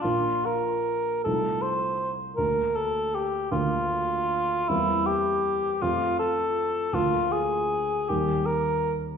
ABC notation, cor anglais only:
X:1
M:6/8
L:1/8
Q:3/8=53
K:Bb
V:1 name="Cor anglais"
F B2 A c z | B A G F3 | =E G2 F A2 | F _A2 G B z |]